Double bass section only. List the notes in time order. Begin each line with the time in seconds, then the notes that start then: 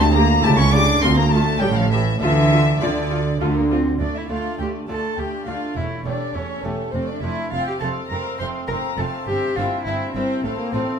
Already playing: D2
0.44 C#2
1.03 D2
1.62 A1
2.21 D2
2.81 D2
3.41 D2
4.01 D2
4.30 D2
4.60 D2
4.89 D2
5.18 D2
5.47 D2
5.76 E1
6.05 E1
6.35 E1
6.64 E1
6.93 F1
7.22 F1
7.52 F1
7.82 F1
8.11 F1
8.40 F1
8.69 F1
8.98 F1
9.28 G1
9.57 G1
9.85 G1
10.15 G1
10.44 A1
10.73 A1